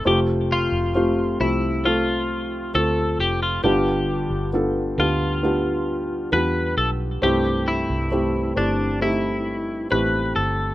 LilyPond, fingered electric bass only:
\new Staff \with { instrumentName = "Fingered electric bass" } { \clef bass \time 4/4 \key c \major \tempo 4 = 67 f,,8. f,,8. c,4. d,8 f,,8 | g,,8. g,,8. d,4. e,8 b,,8 | c,8. c,8. g,,4. a,,8 g,,8 | }